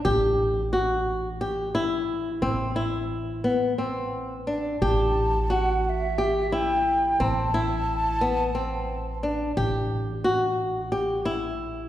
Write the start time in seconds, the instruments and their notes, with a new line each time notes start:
0.05 upright bass A1, nylon-string guitar G4
0.73 nylon-string guitar F#4
1.41 nylon-string guitar G4
1.75 nylon-string guitar E4
2.42 upright bass A1, nylon-string guitar C4
2.76 nylon-string guitar E4
3.44 nylon-string guitar B3
3.78 nylon-string guitar C4
4.47 nylon-string guitar D4
4.82 upright bass A1, nylon-string guitar G4, flute A5
5.50 nylon-string guitar F#4, flute F#5
5.85 flute F#5
5.89 flute E5
6.18 nylon-string guitar G4
6.52 nylon-string guitar E4, flute G5
7.20 upright bass A1, nylon-string guitar C4, flute B5
7.24 flute A5
7.54 nylon-string guitar E4
8.21 nylon-string guitar B3
8.55 nylon-string guitar C4
9.23 nylon-string guitar D4
9.57 upright bass A1, nylon-string guitar G4
10.24 nylon-string guitar F#4
10.92 nylon-string guitar G4
11.25 nylon-string guitar E4